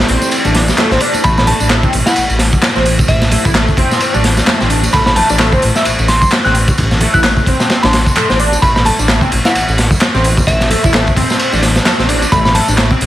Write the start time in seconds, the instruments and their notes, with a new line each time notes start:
Already playing: ambient pad A3 E4 G4 D5
0.08 detuned saw bass A1, analog synth lead C4, open hi-hat, ride, high conga
0.22 tambourine, muted conga
0.31 ride, tambourine
0.45 detuned saw bass A1, analog synth lead D4, tambourine, muted conga, low conga
0.54 snare, open hi-hat, ride, high conga
0.68 snare, tambourine
0.78 analog synth lead A3, snare, clap, ride, tambourine, muted conga, low conga
0.91 detuned saw bass A1, analog synth lead C4, snare, tambourine
1.00 analog synth lead D4, open hi-hat, ride, muted conga
1.13 ride, tambourine, high conga
1.24 detuned saw bass A1, analog synth lead A3, ambient pad C5, synth bell B5, kick, ride, tambourine, muted conga
1.37 synth bell B5, snare, tambourine
1.47 analog synth lead A3, synth bell A5, open hi-hat, ride, muted conga, low conga
1.60 detuned saw bass A1, analog synth lead D4, tambourine
1.70 analog synth lead A3, snare, clap, ride
1.83 analog synth lead C4, kick, tambourine, muted conga
1.93 detuned saw bass A1, open hi-hat, ride, high conga
2.06 analog synth lead E4, synth bell F#5, snare, tambourine, muted conga
2.16 detuned saw bass A1, ride, tambourine
2.30 detuned saw bass A1, tambourine
2.39 snare, open hi-hat, ride, muted conga
2.53 kick, tambourine, low conga
2.62 snare, clap, ride, tambourine, muted conga
2.76 detuned saw bass A1, analog synth lead C4, snare, tambourine
2.86 open hi-hat, ride
2.99 kick, tambourine, muted conga, high conga
3.08 detuned saw bass A1, synth bell E5, kick, ride, tambourine
3.21 snare, tambourine, muted conga
3.31 analog synth lead A3, open hi-hat, ride, high conga, low conga
3.45 detuned saw bass A1, analog synth lead E4, kick, tambourine
3.54 analog synth lead A3, snare, clap, ride, tambourine, muted conga
3.68 kick, tambourine
3.77 detuned saw bass A1, analog synth lead C4, kick, open hi-hat, ride, muted conga, high conga
3.91 snare, tambourine
4.00 ride, tambourine
4.14 detuned saw bass A1, analog synth lead D4, tambourine, muted conga, low conga
4.24 snare, open hi-hat, ride, high conga
4.37 snare, tambourine, muted conga
4.47 analog synth lead A3, snare, clap, ride, tambourine, low conga
4.60 detuned saw bass A1, analog synth lead C4, snare, tambourine
4.70 analog synth lead D4, open hi-hat, ride, muted conga
4.83 ride, tambourine, high conga
4.93 detuned saw bass A1, analog synth lead A3, synth bell B5, kick, ride, muted conga
5.06 synth bell B5, snare, tambourine
5.16 analog synth lead A3, synth bell A5, open hi-hat, ride, low conga
5.29 detuned saw bass A1, analog synth lead D4, tambourine, muted conga
5.39 analog synth lead A3, snare, clap, ride, tambourine
5.52 analog synth lead C4, kick, tambourine, muted conga
5.62 detuned saw bass A1, open hi-hat, ride, high conga
5.76 analog synth lead E4, snare, tambourine
5.85 detuned saw bass A1, ride, tambourine, muted conga
5.99 detuned saw bass A1, tambourine
6.08 synth bell C6, snare, open hi-hat, ride, muted conga
6.21 synth bell C6, kick, tambourine, low conga
6.32 snare, clap, ride, tambourine
6.44 detuned saw bass A1, analog synth lead C4, synth bell F#6, snare, tambourine, muted conga
6.55 open hi-hat, ride
6.68 kick, tambourine, muted conga, high conga
6.78 detuned saw bass A1, kick, ride, tambourine
6.91 snare, tambourine
7.01 analog synth lead A3, open hi-hat, ride, muted conga, high conga, low conga
7.14 detuned saw bass A1, analog synth lead E4, synth bell F#6, kick, tambourine
7.24 analog synth lead A3, snare, clap, ride, tambourine, muted conga
7.37 kick, tambourine
7.46 detuned saw bass A1, analog synth lead C4, kick, open hi-hat, ride, high conga
7.60 snare, tambourine, muted conga
7.70 snare, ride, tambourine
7.83 detuned saw bass A1, analog synth lead D4, synth bell C6, snare, ride, tambourine, muted conga, low conga
7.93 snare, open hi-hat, ride, high conga
8.06 kick, tambourine
8.15 analog synth lead A3, clap, ride, tambourine, muted conga, low conga
8.30 detuned saw bass A1, analog synth lead C4, snare, tambourine
8.39 analog synth lead D4, open hi-hat, muted conga
8.52 tambourine, high conga
8.62 detuned saw bass A1, analog synth lead A3, ambient pad C5, synth bell B5, kick, ride, tambourine, muted conga
8.76 synth bell B5, snare, tambourine
8.85 analog synth lead A3, synth bell A5, open hi-hat, ride, muted conga, low conga
8.99 detuned saw bass A1, analog synth lead D4, tambourine
9.08 analog synth lead A3, snare, clap, ride, tambourine
9.21 analog synth lead C4, kick, tambourine, muted conga
9.32 detuned saw bass A1, open hi-hat, ride, high conga
9.45 analog synth lead E4, synth bell F#5, snare, tambourine, muted conga
9.55 detuned saw bass A1, ride, tambourine
9.68 detuned saw bass A1, tambourine
9.78 snare, open hi-hat, ride, muted conga
9.91 kick, tambourine, low conga
10.01 snare, clap, ride, tambourine, muted conga
10.14 detuned saw bass A1, analog synth lead C4, snare, tambourine
10.24 open hi-hat, ride
10.37 kick, tambourine, muted conga, high conga
10.47 detuned saw bass A1, synth bell E5, kick, ride, tambourine
10.60 snare, tambourine, muted conga
10.70 analog synth lead A3, open hi-hat, ride, high conga, low conga
10.83 detuned saw bass A1, analog synth lead E4, kick, tambourine
10.93 analog synth lead A3, snare, clap, ride, tambourine, muted conga
11.07 kick, tambourine
11.16 detuned saw bass A1, analog synth lead C4, kick, open hi-hat, ride, muted conga, high conga
11.30 snare, tambourine
11.39 ride, tambourine
11.52 detuned saw bass A1, analog synth lead D4, tambourine, muted conga, low conga
11.62 snare, open hi-hat, ride, high conga
11.76 snare, tambourine, muted conga
11.85 analog synth lead A3, snare, clap, ride, tambourine, low conga
11.99 detuned saw bass A1, analog synth lead C4, snare, tambourine
12.08 analog synth lead D4, open hi-hat, ride, muted conga
12.22 ride, tambourine, high conga
12.32 detuned saw bass A1, analog synth lead A3, synth bell B5, kick, ride, tambourine, muted conga
12.45 synth bell B5, snare, tambourine
12.54 analog synth lead A3, synth bell A5, open hi-hat, ride, low conga
12.68 detuned saw bass A1, analog synth lead D4, tambourine, muted conga
12.78 analog synth lead A3, snare, clap, ride
12.90 analog synth lead C4, kick, tambourine, muted conga
13.01 detuned saw bass A1, open hi-hat, ride, high conga